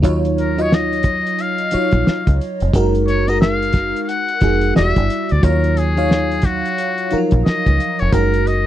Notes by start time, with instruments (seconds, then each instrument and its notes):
0.02 fingered electric bass D#2, fm electric piano F#3 D#4 F4 C#5, kick, closed hi-hat
0.25 closed hi-hat
0.38 muted trumpet A#4, closed hi-hat
0.57 fm electric piano F#3 D#4 F4 D#5, closed hi-hat
0.62 muted trumpet C#5
0.72 muted trumpet D#5, snare
0.93 closed hi-hat
1.03 kick, closed hi-hat
1.27 closed hi-hat
1.39 muted trumpet F5, closed hi-hat
1.58 closed hi-hat
1.71 fm electric piano F#3 D#4 F4 C#5, muted fingered electric bass stroke, closed hi-hat
1.91 fingered electric bass A#1, kick, closed hi-hat
2.07 snare
2.27 fingered electric bass C#2, kick, closed hi-hat
2.41 closed hi-hat
2.60 fingered electric bass F1, closed hi-hat
2.73 fingered electric bass F#1, fm electric piano G#3 D#4 F#4 A#4, kick, closed hi-hat
2.95 closed hi-hat
3.07 muted trumpet C#5, closed hi-hat
3.28 fm electric piano G#3 D#4 F#4 A#4, muted trumpet D#5, closed hi-hat
3.41 muted trumpet F5, snare
3.62 closed hi-hat
3.73 kick, snare, closed hi-hat
3.96 closed hi-hat
4.03 muted trumpet F5
4.08 muted trumpet F#5, closed hi-hat
4.28 closed hi-hat
4.41 fingered electric bass F1, fm electric piano G#3 D#4 F#4 G#4, kick, closed hi-hat
4.61 closed hi-hat
4.75 fingered electric bass E1, fm electric piano G3 E4 F#4 D5, muted trumpet E5, snare
4.96 fingered electric bass G1, kick, closed hi-hat
5.10 closed hi-hat
5.29 fingered electric bass D2, muted trumpet D5, closed hi-hat
5.42 fingered electric bass D#2, fm electric piano F#3 D#4 F4 C#5, muted trumpet A#4, kick, closed hi-hat
5.64 closed hi-hat
5.77 muted trumpet G#4, closed hi-hat
5.97 fm electric piano F#3 D#4 C#5 F5, closed hi-hat
6.11 snare
6.31 closed hi-hat
6.42 muted trumpet F#4, kick, snare, closed hi-hat
6.65 closed hi-hat
6.78 closed hi-hat
6.98 closed hi-hat
7.10 fm electric piano F3 D#4 F4 A#4, muted fingered electric bass stroke, closed hi-hat
7.18 fm electric piano F#3
7.31 fingered electric bass A#1, kick, closed hi-hat
7.45 muted trumpet D#5, snare
7.66 fingered electric bass C#2, kick, closed hi-hat
7.80 closed hi-hat
7.99 fingered electric bass F1, muted trumpet C#5, closed hi-hat
8.12 fingered electric bass F#1, fm electric piano G#3 D#4 F#4 A#4, muted trumpet A#4, kick, closed hi-hat
8.34 closed hi-hat
8.47 muted trumpet D#5, closed hi-hat